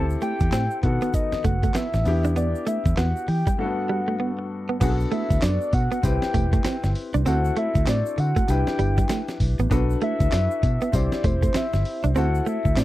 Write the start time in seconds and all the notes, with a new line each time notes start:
Already playing: D2 C4 E4 G4 A4
0.10 shaker
0.21 A3 G5, closed hi-hat, shaker
0.40 E2, muted clean electric guitar stroke, kick, closed hi-hat, shaker
0.52 A2 C4, snare, clap, closed hi-hat, shaker
0.71 shaker
0.82 B2 D#3 B3 F#4 A4 F#5, muted clean electric guitar stroke, kick, closed hi-hat
1.01 B3, closed hi-hat, shaker
1.14 D#5, muted clean electric guitar stroke, kick, closed hi-hat, shaker
1.32 muted fingered electric bass stroke, snare, shaker
1.44 F#1 A3 F#5, kick, closed hi-hat, shaker
1.63 A3, kick, closed hi-hat, shaker
1.74 B3 E5, muted fingered electric bass stroke, snare, clap, closed hi-hat, shaker
1.94 A1, muted clean electric guitar stroke, snare, shaker
2.05 E2 B3 D4 E4 G4, open hi-hat, shaker
2.24 D4, closed hi-hat, shaker
2.36 B3 D5, closed hi-hat, shaker
2.55 shaker
2.67 A3 E5, closed hi-hat, shaker
2.85 E2, muted clean electric guitar stroke, kick, closed hi-hat, shaker
2.97 E2 B3 F#5, snare, clap, closed hi-hat, shaker
3.17 shaker
3.28 E3 G5, muted clean electric guitar stroke, open hi-hat
3.47 G3, kick, closed hi-hat, shaker
3.58 G2 A3 D4 F#4 A4 F#5, muted clean electric guitar stroke
3.65 B3
3.89 G3
4.08 A3
4.20 B3
4.39 muted clean electric guitar stroke
4.69 B3
4.80 B1 B3 D4 F#4 G#4 F#5, kick, closed hi-hat, crash, tambourine, shaker
4.89 A4
5.00 shaker
5.12 A3 E5, closed hi-hat
5.30 D2, muted clean electric guitar stroke, kick, closed hi-hat, shaker
5.42 F#2 D4 D5, snare, clap, closed hi-hat, tambourine, shaker
5.61 shaker
5.72 B2 F#5, muted clean electric guitar stroke, kick, closed hi-hat, tambourine
5.92 B3, closed hi-hat, shaker
6.03 C2 C4 E4 G4 B4 G5, muted clean electric guitar stroke, kick, closed hi-hat, tambourine, shaker
6.22 snare, shaker
6.34 E1 A3, kick, closed hi-hat, tambourine
6.53 A3, kick, closed hi-hat, shaker
6.64 C4, muted fingered electric bass stroke, snare, clap, closed hi-hat, tambourine, shaker
6.84 G1, muted clean electric guitar stroke, snare, shaker
6.95 open hi-hat, tambourine
7.14 C2 D4, closed hi-hat, shaker
7.25 D2 C4 E4 F#4 A4 F#5, closed hi-hat, tambourine, shaker
7.45 shaker
7.56 A3 E5, closed hi-hat
7.75 D2, muted clean electric guitar stroke, kick, closed hi-hat, shaker
7.87 A2 C4 D5, snare, clap, closed hi-hat, tambourine, shaker
8.06 shaker
8.18 D3 F#5, muted clean electric guitar stroke, closed hi-hat, tambourine
8.36 A3, kick, closed hi-hat, shaker
8.48 C2 D4 E4 G4 B4 G5, muted clean electric guitar stroke, closed hi-hat, tambourine, shaker
8.67 snare, shaker
8.79 G1 G3, closed hi-hat, tambourine
8.98 G3, kick, closed hi-hat, shaker
9.09 A3, snare, clap, closed hi-hat, tambourine, shaker
9.28 muted clean electric guitar stroke, snare, shaker
9.40 B1, kick, open hi-hat, tambourine
9.59 A1 B3, closed hi-hat, shaker
9.70 B1 B3 D4 F#4 A4 B4, kick, closed hi-hat, tambourine, shaker
9.90 shaker
10.01 A3 E5, closed hi-hat
10.20 D2, muted clean electric guitar stroke, kick, closed hi-hat, shaker
10.32 F#2 D4, snare, clap, closed hi-hat, tambourine, shaker
10.51 shaker
10.63 B2, muted clean electric guitar stroke, kick, closed hi-hat, tambourine
10.81 B3, closed hi-hat, shaker
10.92 C2 C4 E4 G4 C5 D5, muted clean electric guitar stroke, kick, closed hi-hat, tambourine, shaker
11.12 muted fingered electric bass stroke, snare, shaker
11.24 E1 A3 C5, kick, closed hi-hat, tambourine
11.42 A3, kick, closed hi-hat, shaker
11.54 C4 E5, muted fingered electric bass stroke, snare, clap, closed hi-hat, tambourine, shaker
11.73 G1, muted clean electric guitar stroke, snare, shaker
11.85 open hi-hat, tambourine
12.04 C2 D4, closed hi-hat, shaker
12.15 D2 C4 E4 F#4 A4 F#5, tambourine, shaker
12.35 shaker
12.46 A3 E5, shaker
12.65 D2, muted clean electric guitar stroke, kick, shaker
12.76 A2 C4 D5, snare, clap, tambourine, shaker